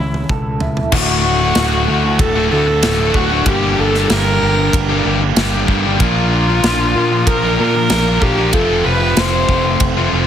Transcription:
Already playing: A2 E4
0.00 C#2 C#4
0.14 high tom
0.29 C#2 A4, kick, mid tom
0.60 E4, floor tom
0.77 floor tom
0.92 D1 D2 A2 D3 A3 F#4, kick, crash
1.24 A2 D3 A3 F#4
1.41 D3 A3 F#4
1.55 D1 D2 A2 D3 A3 F#4, snare, ride bell
1.87 D2 A2 D3 A3 F#4
2.03 D3 A3 F#4, muted overdriven electric guitar stroke
2.19 D1 A4, kick, ride bell
2.36 D3 A3 F#4
2.51 D2 A2 D3 A3 F#4 A4
2.67 D3 A3 F#4, muted overdriven electric guitar stroke
2.81 D1 D2 A2 D3 A3 F#4, snare, ride bell
2.99 D3 A3 F#4
3.12 D1 D2 A2 D3 A3 F#4, kick
3.30 D3 A3 F#4
3.46 G1 G2 D3 G3 A#3 D4 G4, kick, ride bell
3.78 G1 G3 A#3 D4 G4 A4
3.94 G3 A#3 D4 G4, snare
4.10 G1 G2 D3 G3 A#3 D4 G4 A#4, snare, ride bell
4.42 G1 G3 A#3 D4 G4
4.58 G3 A#3 D4 G4, muted overdriven electric guitar stroke
4.73 G1, kick, ride bell
4.90 G3 A#3 D4 G4
5.05 G1 G3 A#3 D4 G4
5.22 G3 A#3 D4 G4, muted overdriven electric guitar stroke
5.36 G1 G2 D3 G3 A#3, snare, ride bell
5.41 D4 G4
5.54 G3 A#3 D4 G4
5.67 G1 G2 D3 G3 A#3 D4 G4, kick
5.86 G3 A#3 D4 G4
6.00 A#1 A#2 F3 A#3 D4 F4 A#4, kick, ride bell
6.34 A#3 D4 F4 A#4
6.48 A#3 D4 F4 A#4
6.63 A#1 A#2 F3 A#3 D4 F4 A#4, snare, ride bell
6.95 A#2 A#3 D4 F4 A#4
7.11 A#3 D4 F4 A#4, muted overdriven electric guitar stroke
7.27 A#1 A#4, kick, ride bell
7.44 A#3 D4 F4 A#4
7.59 A#2 A#3 D4 F4 A#4
7.75 A#3 D4 F4 A#4, muted overdriven electric guitar stroke
7.90 A#1 A#2 F3 A#3 D4 F4 A#4, snare, ride bell
8.06 A#3 D4 F4 A#4
8.20 A#1 A#2 F3 A#3 D4 F4 G4 A#4, kick
8.37 A#3 D4 F4 A#4
8.53 F1 F2 C3 F3 A3 C4 F4 A4, kick, ride bell
8.84 F1 F3 A3 C4 F4 B4
9.01 F3 A3 C4 F4
9.16 F1 F2 C3 F3 A3 C4 F4 C5, snare, ride bell
9.48 F1 F3 A3 C4 F4, kick
9.65 F3 A3 C4 F4, muted overdriven electric guitar stroke
9.80 F1, kick, ride bell
9.97 F3 A3 C4 F4
10.13 F1 F3 A3 C4 F4

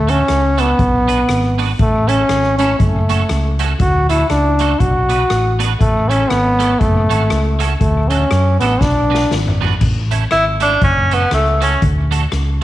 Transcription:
Already playing: D2 A3
0.07 A3 C#4 D4 F#4 A4, closed hi-hat
0.28 C#2, cross-stick, closed hi-hat
0.58 A3 B3 D4 F#4 A4, closed hi-hat
0.79 B1, kick, closed hi-hat
1.08 B3 D4 F#4 B4, closed hi-hat
1.29 G#1, cross-stick, closed hi-hat
1.58 B3 D4 F#4 B4, open hi-hat
1.79 A1 A3, kick, closed hi-hat
2.08 A3 C#4 E4 A4, closed hi-hat
2.29 G#1, cross-stick, closed hi-hat
2.58 A3 C#4 E4 A4, closed hi-hat
2.79 F#1 A3, kick, closed hi-hat
3.09 A3 C#4 F#4 A4, closed hi-hat
3.29 C#2, cross-stick, closed hi-hat
3.59 A3 C#4 F#4 A4, closed hi-hat
3.80 D2 F#4, kick, closed hi-hat
4.09 A3 D4 E4 F#4 A4, closed hi-hat
4.30 C#2 D4, cross-stick, closed hi-hat
4.59 A3 D4 F#4 A4, closed hi-hat
4.80 B1 F#4, kick, closed hi-hat
5.09 B3 D4 F#4 B4, closed hi-hat
5.30 A1, cross-stick, closed hi-hat
5.59 B3 D4 F#4 B4, closed hi-hat
5.79 A1 A3, kick, closed hi-hat
6.09 A3 C#4 E4 A4, closed hi-hat
6.29 G#1 B3, cross-stick, closed hi-hat
6.59 A3 C#4 E4 A4, closed hi-hat
6.79 F#1 A3, kick, closed hi-hat
7.10 G#1 A3 C#4 F#4 A4, closed hi-hat
7.30 C#2, cross-stick, closed hi-hat
7.59 A3 C#4 F#4 A4, closed hi-hat
7.79 D2 A3, kick, closed hi-hat
8.09 A3 C#4 D4 F#4 A4, closed hi-hat
8.31 F#2, cross-stick, closed hi-hat
8.60 A1 A3 B3 D4 F#4 A4, closed hi-hat
8.81 B1 D4, kick, snare
9.10 B3 D4 F#4 B4
9.15 snare
9.31 G#1, snare
9.47 floor tom
9.61 B3 D4 F#4 B4, floor tom
9.81 A1, kick, crash
10.11 A3 C#4 E4 A4, closed hi-hat
10.31 G#1 E4, cross-stick, closed hi-hat
10.60 A3 C#4 D4 E4 A4, closed hi-hat
10.82 F#1 C#4, kick, closed hi-hat
11.11 A3 B3 C#4 F#4 A4, closed hi-hat
11.31 C#2 A3, cross-stick, closed hi-hat
11.61 A3 C#4 F#4 A4, closed hi-hat
11.82 D2, kick, closed hi-hat
12.11 A3 D4 F#4 A4, closed hi-hat
12.32 C#2, cross-stick, closed hi-hat

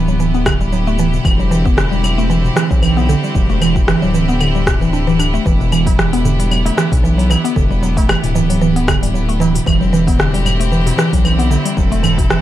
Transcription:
Already playing: D1 D3 B3 E4 G4
0.08 F#3, shaker
0.20 E3, shaker
0.34 B3, shaker
0.46 D3, kick, cross-stick, claves, shaker
0.61 G3, shaker
0.72 F#3, shaker
0.87 A3, shaker
0.99 E3, shaker
1.13 B2, shaker
1.25 E1 E3 C4, kick, claves, shaker
1.39 F#3, shaker
1.51 E3, shaker
1.65 B3, kick, shaker
1.77 D3, cross-stick, shaker
1.91 G3, shaker
2.04 F#3, claves, shaker
2.18 A3, shaker
2.30 E3, shaker
2.44 B2, shaker
2.56 E3, cross-stick, shaker
2.71 B1 F#3, kick, shaker
2.82 E3, claves, shaker
2.97 B3, shaker
3.09 D3, shaker
3.24 G3, shaker
3.35 E1 F#3, kick, shaker
3.50 A3, shaker
3.62 E3, claves, shaker
3.76 B2, kick, shaker
3.88 E3, cross-stick, shaker
4.02 D1 F#3, shaker
4.14 E3, shaker
4.29 B3, shaker
4.41 D3, claves, shaker
4.55 G3, shaker
4.67 B2, kick, cross-stick, shaker
4.81 E3, shaker
4.93 D4, shaker
5.07 E3, shaker
5.19 D4, claves, shaker
5.34 A3, shaker
5.46 E1 E3 B3, kick, shaker
5.61 B2, shaker
5.72 E3, claves, shaker
5.86 F#3, kick, open hi-hat, tabla na, shaker
5.99 E3, cross-stick, shaker
6.13 B3, open hi-hat, shaker
6.25 D3, tabla tin, tabla ge, shaker
6.39 G3, open hi-hat, shaker
6.51 F#3, claves, shaker
6.65 A3, open hi-hat, tabla na, tabla tin, shaker
6.77 E3, cross-stick, shaker
6.92 B1 B2, kick, open hi-hat, shaker
7.04 E3, shaker
7.18 F#3, open hi-hat, shaker
7.30 E3, tabla na, claves, shaker
7.44 B3, open hi-hat, tabla tin, shaker
7.56 E1 D3, kick, shaker
7.71 G3, shaker
7.83 F#3, shaker
7.97 A3, kick, open hi-hat, tabla na, tabla tin, shaker
8.09 E3, cross-stick, claves, shaker
8.23 D1 B2, open hi-hat, shaker
8.35 E3, tabla tin, tabla ge, shaker
8.50 F#3, open hi-hat, shaker
8.61 E3, shaker
8.76 B3, open hi-hat, tabla tin, shaker
8.88 D3, kick, cross-stick, tabla tin, claves, shaker
9.02 G3, open hi-hat, tabla ge, shaker
9.14 F#3, shaker
9.29 A3, open hi-hat, shaker
9.40 E3, tabla na, shaker
9.55 B2, open hi-hat, shaker
9.66 E1 D3 E3 C4 E4 G4, kick, claves, shaker
9.81 F#3, shaker
9.93 E3, shaker
10.07 B3, kick, open hi-hat, tabla na, shaker
10.19 D3, cross-stick, shaker
10.34 G3, open hi-hat, shaker
10.45 F#3, tabla tin, tabla ge, claves, shaker
10.60 A3, open hi-hat, shaker
10.72 E3, shaker
10.86 B2, open hi-hat, tabla na, tabla tin, shaker
10.98 E3, cross-stick, shaker
11.13 B1 F#3, kick, open hi-hat, shaker
11.25 E3, claves, shaker
11.39 B3, open hi-hat, shaker
11.51 D3, tabla na, shaker
11.65 G3, open hi-hat, tabla tin, shaker
11.77 E1 F#3 A4, kick, shaker
11.92 A3, open hi-hat, shaker
12.03 E3, tabla ge, claves, shaker
12.18 B2, kick, open hi-hat, tabla na, tabla tin, shaker
12.30 E3, cross-stick, shaker

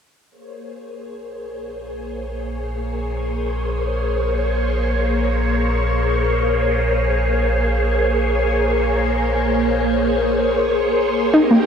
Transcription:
0.30 A#1 A#3 G#4 C5 C#5
11.34 C2 C4 D#4 G4 A#4 D#5
11.51 A#3

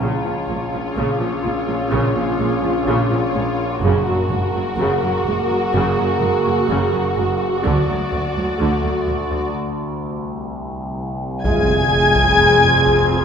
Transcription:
0.00 A#1 A#2 C#3 C#4 F4 G#4 C#5
0.25 A#2 F3
0.48 A#1 A#2 G#3
0.73 A#2 F3
0.96 A#1 A#2 C#3
1.20 A#2 F3
1.44 A#1 A#2 G#3
1.66 A#2 F3
1.90 A#1 A#2 C#3
2.15 A#2 F3
2.39 A#1 A#2 G#3
2.63 A#2 F3
2.87 A#1 A#2 C#3
3.11 A#2 F3
3.35 A#1 A#2 G#3
3.82 F#1 F#2 C#3 A#3 F#4 G#4 A#4
4.07 F#2 F#3
4.30 F#1 F#2 G#3
4.55 F#2 F#3
4.78 F#1 F#2 C#3
5.02 F#2 F#3
5.25 F#1 F#2 G#3
5.49 F#2 F#3
5.73 F#1 F#2 C#3
5.98 F#2 F#3
6.20 F#1 F#2 G#3
6.44 F#2 F#3
6.67 F#1 F#2 C#3
6.92 F#2 F#3
7.17 F#1 F#2 G#3
7.63 D2 D3 A3 F#4 D5
7.88 D2 F#3
8.11 D2 A3
8.36 D2 F#3
8.59 D2 D3
8.83 D2 F#3
9.07 D2 A3
9.30 D2 F#3
9.55 C2
11.44 F1 F2 G#3 C4 F4 G#4 G#5 G#6, taiko, impact
12.15 taiko
12.40 taiko low-mid
12.64 taiko low-mid
12.87 taiko

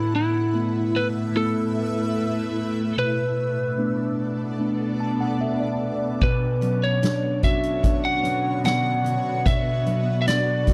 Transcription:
Already playing: A2 A3 E4 B4 E5
0.16 E4
0.54 A3 B3 E4
0.96 B4
1.35 A3 B3 E4 A4
2.98 B2 B3 D4 A4 B4 D5
3.78 A3 B3 D4
4.59 A3 B3 D4
5.00 A5
5.21 F#5
5.41 E5
5.60 D5
6.21 B2 D3 B3 F#4 B4 C#5, kick, crash
6.61 F#3 C#4, closed hi-hat
6.84 C#5
7.02 D4, snare, closed hi-hat
7.43 C#4 F#4 E5, kick, closed hi-hat
7.63 closed hi-hat
7.83 D4, kick, closed hi-hat
8.05 F#5
8.24 C#4, closed hi-hat
8.64 B3 D4 F#5, snare, closed hi-hat
9.04 F#4, closed hi-hat
9.45 B2 A4 D5 E5, kick, closed hi-hat
9.86 F#3 B3, closed hi-hat
10.22 E5
10.26 D4 D5, snare, closed hi-hat
10.67 B3 F#4, kick, closed hi-hat

